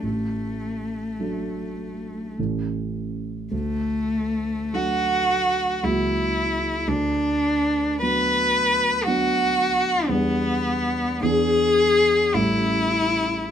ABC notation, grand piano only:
X:1
M:3/4
L:1/8
Q:1/4=53
K:D
V:1 name="Grand piano"
A,,,2 [F,A,D]2 [A,,,E,A,C]2 | D,,2 [F,A,D]2 [C,,F,^A,F]2 | D,,2 [F,B,D]2 [F,B,D]2 | [E,,G,B,D]2 [E,,E,B,D]2 [A,,,G,A,C]2 |]